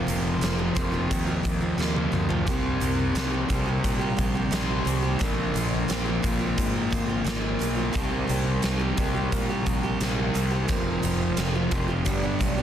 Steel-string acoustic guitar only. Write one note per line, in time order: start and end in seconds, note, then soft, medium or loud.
0.00 0.40 F2 medium
0.00 0.40 C3 medium
0.07 0.41 F3 medium
0.07 0.42 A#3 medium
0.07 0.43 C4 medium
0.07 0.42 F4 medium
0.41 0.93 F2 medium
0.41 0.93 C3 medium
0.41 0.58 F3 loud
0.41 0.58 A#3 loud
0.41 0.58 C4 medium
0.41 0.56 F4 loud
0.57 0.74 F3 soft
0.57 0.75 A#3 medium
0.57 0.76 C4 medium
0.57 0.76 F4 medium
0.75 0.94 F3 medium
0.75 0.93 A#3 medium
0.75 0.92 C4 medium
0.75 0.91 F4 medium
0.92 1.28 F3 medium
0.92 1.28 A#3 medium
0.92 1.27 C4 medium
0.92 1.25 F4 medium
1.27 1.42 F3 medium
1.27 1.44 A#3 medium
1.27 1.45 C4 medium
1.27 1.45 F4 medium
1.43 1.62 F3 medium
1.43 1.62 A#3 medium
1.43 1.61 C4 medium
1.43 1.59 F4 medium
1.61 1.78 F3 medium
1.61 1.79 A#3 medium
1.61 1.80 C4 medium
1.61 1.79 F4 medium
1.78 2.45 F2 medium
1.78 2.45 C3 medium
1.78 2.11 F3 medium
1.78 2.12 A#3 loud
1.78 2.14 C4 loud
1.78 2.13 F4 loud
2.12 2.30 F3 medium
2.12 2.30 A#3 medium
2.12 2.30 C4 medium
2.12 2.28 F4 medium
2.29 2.46 F3 medium
2.29 2.48 A#3 soft
2.29 2.48 C4 medium
2.29 2.44 F4 medium
2.46 3.14 C3 medium
2.46 2.79 D#3 medium
2.46 2.81 A#3 medium
2.46 2.82 C4 loud
2.46 2.82 G4 loud
2.80 3.14 D#3 medium
2.80 3.16 A#3 medium
2.80 3.17 C4 medium
2.80 3.16 G4 medium
3.15 3.67 C3 loud
3.15 3.47 D#3 loud
3.15 3.34 A#3 loud
3.15 3.33 C4 loud
3.15 3.30 G4 loud
3.31 3.49 A#3 medium
3.31 3.50 C4 medium
3.31 3.50 G4 medium
3.49 4.01 D#3 medium
3.49 3.68 A#3 medium
3.49 3.67 C4 medium
3.49 3.65 G4 medium
3.66 4.01 A#3 medium
3.66 4.01 C4 medium
3.66 3.98 G4 medium
3.99 4.18 A#3 medium
3.99 4.18 C4 medium
3.99 4.18 G4 medium
4.17 4.51 D#3 medium
4.17 4.36 A#3 medium
4.17 4.35 C4 medium
4.17 4.33 G4 medium
4.34 4.52 A#3 medium
4.34 4.53 C4 medium
4.34 4.52 G4 medium
4.51 5.18 C3 medium
4.51 4.84 D#3 medium
4.51 4.85 A#3 medium
4.51 4.86 C4 loud
4.51 4.86 G4 medium
4.85 5.18 D#3 medium
4.85 5.05 A#3 medium
4.85 5.04 C4 medium
4.85 5.01 G4 medium
5.02 5.20 A#3 medium
5.02 5.21 C4 medium
5.02 5.18 G4 medium
5.19 5.87 A#2 medium
5.19 5.53 D3 medium
5.19 5.55 A#3 medium
5.19 5.56 C4 medium
5.19 5.56 F4 loud
5.54 5.87 D3 medium
5.54 5.89 A#3 medium
5.54 5.90 C4 medium
5.54 5.89 F4 medium
5.88 6.40 A#2 medium
5.88 6.21 D3 medium
5.88 6.08 A#3 loud
5.88 6.07 C4 loud
5.88 6.05 F4 medium
6.06 6.23 A#3 soft
6.06 6.24 C4 medium
6.06 6.24 F4 medium
6.22 6.74 D3 medium
6.22 6.41 A#3 medium
6.22 6.40 C4 medium
6.22 6.38 F4 medium
6.39 6.76 A#3 medium
6.39 6.75 C4 medium
6.39 6.72 F4 medium
6.73 6.91 A#3 medium
6.73 6.92 C4 medium
6.73 6.92 F4 medium
6.90 7.24 D3 medium
6.90 7.10 A#3 medium
6.90 7.09 C4 medium
6.90 7.07 F4 medium
7.08 7.26 A#3 medium
7.08 7.27 C4 medium
7.08 7.26 F4 medium
7.24 7.92 A#2 medium
7.24 7.58 D3 medium
7.24 7.59 A#3 medium
7.24 7.60 C4 medium
7.24 7.60 F4 medium
7.59 7.92 D3 medium
7.59 7.78 A#3 medium
7.59 7.77 C4 medium
7.59 7.74 F4 medium
7.76 7.94 A#3 medium
7.76 7.95 C4 medium
7.76 7.92 F4 medium
7.93 8.61 C3 medium
7.93 8.26 D#3 loud
7.93 8.28 A#3 loud
7.93 8.28 C4 medium
7.93 8.29 G4 medium
8.28 8.62 D#3 medium
8.28 8.63 A#3 medium
8.28 8.63 C4 medium
8.28 8.64 G4 medium
8.62 9.14 C3 medium
8.62 8.96 D#3 medium
8.62 8.81 A#3 medium
8.62 8.80 C4 medium
8.62 8.78 G4 loud
8.79 8.97 A#3 medium
8.79 8.98 C4 medium
8.79 8.99 G4 medium
8.97 9.49 D#3 medium
8.97 9.16 A#3 medium
8.97 9.15 C4 medium
8.97 9.13 G4 medium
9.14 9.51 A#3 medium
9.14 9.49 C4 medium
9.14 9.48 G4 medium
9.49 9.66 A#3 medium
9.49 9.67 C4 medium
9.49 9.67 G4 medium
9.66 10.00 D#3 medium
9.66 9.85 A#3 medium
9.66 9.84 C4 medium
9.66 9.82 G4 medium
9.83 10.00 A#3 medium
9.83 10.01 C4 medium
9.83 10.02 G4 medium
10.00 10.67 C3 medium
10.00 10.33 D#3 medium
10.00 10.33 A#3 medium
10.00 10.34 C4 medium
10.00 10.35 G4 medium
10.34 10.67 D#3 medium
10.34 10.52 A#3 medium
10.34 10.51 C4 medium
10.34 10.49 G4 medium
10.50 10.68 A#3 soft
10.50 10.67 C4 medium
10.50 10.66 G4 medium
10.68 11.35 F2 medium
10.68 11.36 C3 medium
10.68 11.01 F3 medium
10.68 11.02 A#3 loud
10.68 11.03 C4 medium
10.68 11.04 F4 loud
11.02 11.37 F3 medium
11.02 11.37 A#3 medium
11.02 11.38 C4 medium
11.02 11.38 F4 medium
11.37 11.88 F2 medium
11.37 11.89 C3 medium
11.37 11.55 F3 medium
11.37 11.54 A#3 loud
11.37 11.54 C4 loud
11.37 11.52 F4 medium
11.54 11.70 F3 medium
11.54 11.70 A#3 medium
11.54 11.72 C4 medium
11.54 11.73 F4 medium
11.71 11.89 F3 medium
11.71 11.89 A#3 medium
11.71 11.88 C4 medium
11.71 11.86 F4 medium
11.88 12.05 F3 medium
11.88 12.05 A#3 medium
11.88 12.04 C4 medium
11.88 12.03 F4 medium
12.05 12.57 G2 medium
12.05 12.57 D3 medium
12.05 12.24 G3 medium
12.05 12.23 B3 medium
12.05 12.22 D4 medium
12.05 12.21 G4 loud
12.22 12.38 G3 soft
12.22 12.39 B3 medium
12.22 12.39 D4 medium
12.22 12.41 G4 medium
12.39 12.58 G3 medium
12.39 12.57 B3 medium
12.39 12.56 D4 medium
12.39 12.55 G4 medium
12.56 12.62 G3 medium
12.56 12.62 B3 medium
12.56 12.62 D4 medium
12.56 12.62 G4 medium